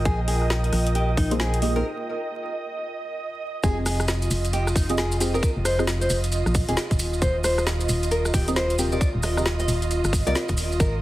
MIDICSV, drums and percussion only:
0, 0, Header, 1, 2, 480
1, 0, Start_track
1, 0, Key_signature, -4, "minor"
1, 0, Tempo, 447761
1, 59, Time_signature, 4, 2, 24, 8
1, 11811, End_track
2, 0, Start_track
2, 0, Title_t, "Drums"
2, 58, Note_on_c, 9, 42, 69
2, 59, Note_on_c, 9, 36, 119
2, 165, Note_off_c, 9, 42, 0
2, 166, Note_off_c, 9, 36, 0
2, 298, Note_on_c, 9, 46, 113
2, 405, Note_off_c, 9, 46, 0
2, 448, Note_on_c, 9, 37, 30
2, 538, Note_on_c, 9, 38, 108
2, 555, Note_off_c, 9, 37, 0
2, 645, Note_off_c, 9, 38, 0
2, 687, Note_on_c, 9, 42, 39
2, 778, Note_on_c, 9, 37, 52
2, 778, Note_on_c, 9, 46, 109
2, 795, Note_off_c, 9, 42, 0
2, 885, Note_off_c, 9, 37, 0
2, 885, Note_off_c, 9, 46, 0
2, 928, Note_on_c, 9, 42, 67
2, 1019, Note_off_c, 9, 42, 0
2, 1019, Note_on_c, 9, 42, 70
2, 1126, Note_off_c, 9, 42, 0
2, 1258, Note_on_c, 9, 36, 103
2, 1258, Note_on_c, 9, 46, 114
2, 1365, Note_off_c, 9, 36, 0
2, 1365, Note_off_c, 9, 46, 0
2, 1408, Note_on_c, 9, 42, 71
2, 1497, Note_on_c, 9, 38, 112
2, 1515, Note_off_c, 9, 42, 0
2, 1605, Note_off_c, 9, 38, 0
2, 1648, Note_on_c, 9, 42, 55
2, 1737, Note_on_c, 9, 46, 112
2, 1755, Note_off_c, 9, 42, 0
2, 1844, Note_off_c, 9, 46, 0
2, 3895, Note_on_c, 9, 70, 59
2, 3897, Note_on_c, 9, 36, 126
2, 3898, Note_on_c, 9, 42, 64
2, 4003, Note_off_c, 9, 70, 0
2, 4005, Note_off_c, 9, 36, 0
2, 4005, Note_off_c, 9, 42, 0
2, 4137, Note_on_c, 9, 37, 73
2, 4137, Note_on_c, 9, 46, 121
2, 4139, Note_on_c, 9, 70, 89
2, 4244, Note_off_c, 9, 37, 0
2, 4244, Note_off_c, 9, 46, 0
2, 4246, Note_off_c, 9, 70, 0
2, 4287, Note_on_c, 9, 37, 72
2, 4288, Note_on_c, 9, 70, 38
2, 4375, Note_off_c, 9, 70, 0
2, 4375, Note_on_c, 9, 70, 56
2, 4377, Note_on_c, 9, 38, 116
2, 4394, Note_off_c, 9, 37, 0
2, 4482, Note_off_c, 9, 70, 0
2, 4484, Note_off_c, 9, 38, 0
2, 4523, Note_on_c, 9, 70, 36
2, 4527, Note_on_c, 9, 42, 37
2, 4618, Note_off_c, 9, 70, 0
2, 4618, Note_on_c, 9, 46, 109
2, 4618, Note_on_c, 9, 70, 96
2, 4634, Note_off_c, 9, 42, 0
2, 4725, Note_off_c, 9, 46, 0
2, 4725, Note_off_c, 9, 70, 0
2, 4766, Note_on_c, 9, 42, 65
2, 4767, Note_on_c, 9, 70, 42
2, 4858, Note_off_c, 9, 42, 0
2, 4858, Note_off_c, 9, 70, 0
2, 4858, Note_on_c, 9, 42, 71
2, 4858, Note_on_c, 9, 70, 55
2, 4965, Note_off_c, 9, 42, 0
2, 4965, Note_off_c, 9, 70, 0
2, 5008, Note_on_c, 9, 37, 61
2, 5009, Note_on_c, 9, 70, 41
2, 5098, Note_on_c, 9, 36, 110
2, 5098, Note_on_c, 9, 46, 115
2, 5106, Note_off_c, 9, 70, 0
2, 5106, Note_on_c, 9, 70, 83
2, 5115, Note_off_c, 9, 37, 0
2, 5205, Note_off_c, 9, 36, 0
2, 5205, Note_off_c, 9, 46, 0
2, 5213, Note_off_c, 9, 70, 0
2, 5242, Note_on_c, 9, 70, 38
2, 5248, Note_on_c, 9, 42, 68
2, 5333, Note_off_c, 9, 70, 0
2, 5333, Note_on_c, 9, 70, 53
2, 5338, Note_on_c, 9, 38, 118
2, 5355, Note_off_c, 9, 42, 0
2, 5440, Note_off_c, 9, 70, 0
2, 5446, Note_off_c, 9, 38, 0
2, 5484, Note_on_c, 9, 70, 39
2, 5489, Note_on_c, 9, 42, 53
2, 5579, Note_on_c, 9, 46, 110
2, 5584, Note_off_c, 9, 70, 0
2, 5584, Note_on_c, 9, 70, 98
2, 5596, Note_off_c, 9, 42, 0
2, 5687, Note_off_c, 9, 46, 0
2, 5691, Note_off_c, 9, 70, 0
2, 5732, Note_on_c, 9, 70, 38
2, 5819, Note_on_c, 9, 36, 127
2, 5819, Note_on_c, 9, 42, 68
2, 5822, Note_off_c, 9, 70, 0
2, 5822, Note_on_c, 9, 70, 55
2, 5926, Note_off_c, 9, 36, 0
2, 5926, Note_off_c, 9, 42, 0
2, 5929, Note_off_c, 9, 70, 0
2, 6059, Note_on_c, 9, 37, 74
2, 6059, Note_on_c, 9, 46, 116
2, 6060, Note_on_c, 9, 70, 97
2, 6166, Note_off_c, 9, 37, 0
2, 6166, Note_off_c, 9, 46, 0
2, 6168, Note_off_c, 9, 70, 0
2, 6208, Note_on_c, 9, 37, 72
2, 6211, Note_on_c, 9, 70, 40
2, 6297, Note_on_c, 9, 38, 118
2, 6302, Note_off_c, 9, 70, 0
2, 6302, Note_on_c, 9, 70, 58
2, 6315, Note_off_c, 9, 37, 0
2, 6404, Note_off_c, 9, 38, 0
2, 6409, Note_off_c, 9, 70, 0
2, 6448, Note_on_c, 9, 42, 36
2, 6448, Note_on_c, 9, 70, 38
2, 6537, Note_off_c, 9, 70, 0
2, 6537, Note_on_c, 9, 70, 104
2, 6539, Note_on_c, 9, 46, 110
2, 6555, Note_off_c, 9, 42, 0
2, 6644, Note_off_c, 9, 70, 0
2, 6646, Note_off_c, 9, 46, 0
2, 6687, Note_on_c, 9, 42, 67
2, 6689, Note_on_c, 9, 70, 43
2, 6774, Note_off_c, 9, 70, 0
2, 6774, Note_on_c, 9, 70, 59
2, 6779, Note_off_c, 9, 42, 0
2, 6779, Note_on_c, 9, 42, 66
2, 6881, Note_off_c, 9, 70, 0
2, 6886, Note_off_c, 9, 42, 0
2, 6926, Note_on_c, 9, 37, 58
2, 6931, Note_on_c, 9, 70, 36
2, 7017, Note_on_c, 9, 46, 111
2, 7018, Note_off_c, 9, 70, 0
2, 7018, Note_on_c, 9, 70, 94
2, 7019, Note_on_c, 9, 36, 113
2, 7034, Note_off_c, 9, 37, 0
2, 7124, Note_off_c, 9, 46, 0
2, 7125, Note_off_c, 9, 70, 0
2, 7126, Note_off_c, 9, 36, 0
2, 7167, Note_on_c, 9, 42, 66
2, 7171, Note_on_c, 9, 70, 40
2, 7256, Note_off_c, 9, 70, 0
2, 7256, Note_on_c, 9, 70, 59
2, 7257, Note_on_c, 9, 38, 121
2, 7274, Note_off_c, 9, 42, 0
2, 7363, Note_off_c, 9, 70, 0
2, 7364, Note_off_c, 9, 38, 0
2, 7407, Note_on_c, 9, 42, 49
2, 7408, Note_on_c, 9, 36, 63
2, 7416, Note_on_c, 9, 70, 36
2, 7497, Note_off_c, 9, 70, 0
2, 7497, Note_on_c, 9, 46, 109
2, 7497, Note_on_c, 9, 70, 101
2, 7514, Note_off_c, 9, 42, 0
2, 7515, Note_off_c, 9, 36, 0
2, 7604, Note_off_c, 9, 46, 0
2, 7604, Note_off_c, 9, 70, 0
2, 7646, Note_on_c, 9, 70, 37
2, 7738, Note_on_c, 9, 36, 127
2, 7738, Note_on_c, 9, 42, 64
2, 7739, Note_off_c, 9, 70, 0
2, 7739, Note_on_c, 9, 70, 57
2, 7845, Note_off_c, 9, 42, 0
2, 7846, Note_off_c, 9, 36, 0
2, 7847, Note_off_c, 9, 70, 0
2, 7976, Note_on_c, 9, 70, 96
2, 7979, Note_on_c, 9, 37, 73
2, 7979, Note_on_c, 9, 46, 107
2, 8083, Note_off_c, 9, 70, 0
2, 8086, Note_off_c, 9, 37, 0
2, 8086, Note_off_c, 9, 46, 0
2, 8127, Note_on_c, 9, 37, 68
2, 8128, Note_on_c, 9, 70, 42
2, 8219, Note_on_c, 9, 38, 121
2, 8221, Note_off_c, 9, 70, 0
2, 8221, Note_on_c, 9, 70, 52
2, 8234, Note_off_c, 9, 37, 0
2, 8326, Note_off_c, 9, 38, 0
2, 8328, Note_off_c, 9, 70, 0
2, 8366, Note_on_c, 9, 70, 41
2, 8369, Note_on_c, 9, 42, 35
2, 8457, Note_off_c, 9, 70, 0
2, 8457, Note_on_c, 9, 70, 98
2, 8459, Note_on_c, 9, 46, 104
2, 8476, Note_off_c, 9, 42, 0
2, 8564, Note_off_c, 9, 70, 0
2, 8566, Note_off_c, 9, 46, 0
2, 8607, Note_on_c, 9, 70, 45
2, 8609, Note_on_c, 9, 42, 64
2, 8696, Note_off_c, 9, 70, 0
2, 8696, Note_on_c, 9, 70, 55
2, 8699, Note_off_c, 9, 42, 0
2, 8699, Note_on_c, 9, 42, 65
2, 8803, Note_off_c, 9, 70, 0
2, 8807, Note_off_c, 9, 42, 0
2, 8845, Note_on_c, 9, 70, 40
2, 8847, Note_on_c, 9, 37, 59
2, 8938, Note_on_c, 9, 36, 115
2, 8938, Note_on_c, 9, 46, 103
2, 8940, Note_off_c, 9, 70, 0
2, 8940, Note_on_c, 9, 70, 104
2, 8954, Note_off_c, 9, 37, 0
2, 9045, Note_off_c, 9, 36, 0
2, 9045, Note_off_c, 9, 46, 0
2, 9047, Note_off_c, 9, 70, 0
2, 9089, Note_on_c, 9, 42, 65
2, 9092, Note_on_c, 9, 70, 39
2, 9179, Note_off_c, 9, 70, 0
2, 9179, Note_on_c, 9, 38, 127
2, 9179, Note_on_c, 9, 70, 59
2, 9196, Note_off_c, 9, 42, 0
2, 9286, Note_off_c, 9, 38, 0
2, 9287, Note_off_c, 9, 70, 0
2, 9328, Note_on_c, 9, 42, 50
2, 9328, Note_on_c, 9, 70, 39
2, 9419, Note_off_c, 9, 70, 0
2, 9419, Note_on_c, 9, 46, 102
2, 9419, Note_on_c, 9, 70, 101
2, 9435, Note_off_c, 9, 42, 0
2, 9526, Note_off_c, 9, 46, 0
2, 9526, Note_off_c, 9, 70, 0
2, 9562, Note_on_c, 9, 70, 42
2, 9658, Note_on_c, 9, 36, 127
2, 9660, Note_on_c, 9, 42, 68
2, 9664, Note_off_c, 9, 70, 0
2, 9664, Note_on_c, 9, 70, 55
2, 9765, Note_off_c, 9, 36, 0
2, 9767, Note_off_c, 9, 42, 0
2, 9771, Note_off_c, 9, 70, 0
2, 9894, Note_on_c, 9, 70, 91
2, 9899, Note_on_c, 9, 37, 69
2, 9899, Note_on_c, 9, 46, 106
2, 10001, Note_off_c, 9, 70, 0
2, 10006, Note_off_c, 9, 37, 0
2, 10006, Note_off_c, 9, 46, 0
2, 10049, Note_on_c, 9, 37, 68
2, 10051, Note_on_c, 9, 70, 38
2, 10137, Note_on_c, 9, 38, 124
2, 10143, Note_off_c, 9, 70, 0
2, 10143, Note_on_c, 9, 70, 51
2, 10156, Note_off_c, 9, 37, 0
2, 10245, Note_off_c, 9, 38, 0
2, 10250, Note_off_c, 9, 70, 0
2, 10285, Note_on_c, 9, 70, 35
2, 10288, Note_on_c, 9, 42, 35
2, 10380, Note_on_c, 9, 46, 102
2, 10381, Note_off_c, 9, 70, 0
2, 10381, Note_on_c, 9, 70, 95
2, 10395, Note_off_c, 9, 42, 0
2, 10487, Note_off_c, 9, 46, 0
2, 10488, Note_off_c, 9, 70, 0
2, 10529, Note_on_c, 9, 42, 63
2, 10534, Note_on_c, 9, 70, 38
2, 10621, Note_off_c, 9, 42, 0
2, 10621, Note_on_c, 9, 42, 68
2, 10623, Note_off_c, 9, 70, 0
2, 10623, Note_on_c, 9, 70, 55
2, 10728, Note_off_c, 9, 42, 0
2, 10730, Note_off_c, 9, 70, 0
2, 10766, Note_on_c, 9, 70, 43
2, 10770, Note_on_c, 9, 37, 55
2, 10858, Note_on_c, 9, 36, 111
2, 10860, Note_on_c, 9, 46, 107
2, 10869, Note_off_c, 9, 70, 0
2, 10869, Note_on_c, 9, 70, 85
2, 10877, Note_off_c, 9, 37, 0
2, 10965, Note_off_c, 9, 36, 0
2, 10968, Note_off_c, 9, 46, 0
2, 10976, Note_off_c, 9, 70, 0
2, 11005, Note_on_c, 9, 70, 39
2, 11009, Note_on_c, 9, 42, 66
2, 11096, Note_off_c, 9, 70, 0
2, 11096, Note_on_c, 9, 70, 53
2, 11099, Note_on_c, 9, 38, 122
2, 11117, Note_off_c, 9, 42, 0
2, 11203, Note_off_c, 9, 70, 0
2, 11206, Note_off_c, 9, 38, 0
2, 11240, Note_on_c, 9, 70, 41
2, 11247, Note_on_c, 9, 36, 64
2, 11248, Note_on_c, 9, 42, 52
2, 11334, Note_off_c, 9, 70, 0
2, 11334, Note_on_c, 9, 70, 91
2, 11338, Note_on_c, 9, 46, 105
2, 11354, Note_off_c, 9, 36, 0
2, 11355, Note_off_c, 9, 42, 0
2, 11441, Note_off_c, 9, 70, 0
2, 11446, Note_off_c, 9, 46, 0
2, 11492, Note_on_c, 9, 70, 41
2, 11576, Note_off_c, 9, 70, 0
2, 11576, Note_on_c, 9, 70, 55
2, 11578, Note_on_c, 9, 36, 126
2, 11579, Note_on_c, 9, 42, 71
2, 11683, Note_off_c, 9, 70, 0
2, 11685, Note_off_c, 9, 36, 0
2, 11686, Note_off_c, 9, 42, 0
2, 11811, End_track
0, 0, End_of_file